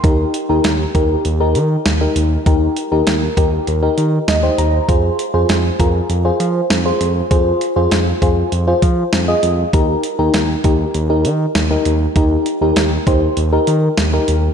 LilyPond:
<<
  \new Staff \with { instrumentName = "FM electric piano" } { \time 4/4 \key ees \major \tempo 4 = 99 << { r1 | r2. ees''8 bes''8 | r1 | r1 |
r1 | r1 | } \\ { <ees' g' bes'>8 r16 <ees' g' bes'>8 r16 <ees' g' bes'>8 r16 <ees' g' bes'>8. r16 <ees' g' bes'>8 r16 | <ees' g' bes'>8 r16 <ees' g' bes'>8 r16 <ees' g' bes'>8 r16 <ees' g' bes'>8. r16 <ees' g' c''>8 r16 | <f' aes' c''>8 r16 <f' aes' c''>8 r16 <f' aes' bes'>8 r16 <f' aes' c''>8. r16 <f' aes' c''>8 r16 | <f' aes' c''>8 r16 <f' aes' c''>8 r16 <f' aes' c''>8 r16 <f' aes' c''>8. r16 <f' aes' ees''>8 r16 |
<ees' g' bes'>8 r16 <ees' g' bes'>8 r16 <ees' g' bes'>8 r16 <ees' g' bes'>8. r16 <ees' g' bes'>8 r16 | <ees' g' bes'>8 r16 <ees' g' bes'>8 r16 <ees' g' c''>8 r16 <ees' g' bes'>8. r16 <ees' g' bes'>8 r16 | } >> }
  \new Staff \with { instrumentName = "Analog synth bass" } { \clef bass \time 4/4 \key ees \major ees,8 r16 ees,16 ees,8 ees,8 ees,8 ees8 ees,8 ees,8 | ees,8 r16 ees,16 ees,8 ees,8 ees,8 ees8 ees,8 ees,8 | f,8 r16 f,16 f,8 f,8 f,8 f8 f,8 f,8 | f,8 r16 f,16 f,8 f,8 f,8 f8 f,8 f,8 |
ees,8 r16 ees,16 ees,8 ees,8 ees,8 ees8 ees,8 ees,8 | ees,8 r16 ees,16 ees,8 ees,8 ees,8 ees8 ees,8 ees,8 | }
  \new DrumStaff \with { instrumentName = "Drums" } \drummode { \time 4/4 <hh bd>8 hh8 <hh sn>8 <hh bd>8 hh8 hh8 <hh sn>8 hh8 | <hh bd>8 hh8 <hh sn>8 <hh bd>8 hh8 hh8 <hh sn>8 hh8 | <hh bd>8 hh8 <hh sn>8 <hh bd>8 hh8 hh8 <hh sn>8 hh8 | <hh bd>8 hh8 <hh sn>8 <hh bd>8 hh8 <hh bd>8 <hh sn>8 hh8 |
<hh bd>8 hh8 <hh sn>8 <hh bd>8 hh8 hh8 <hh sn>8 hh8 | <hh bd>8 hh8 <hh sn>8 <hh bd>8 hh8 hh8 <hh sn>8 hh8 | }
>>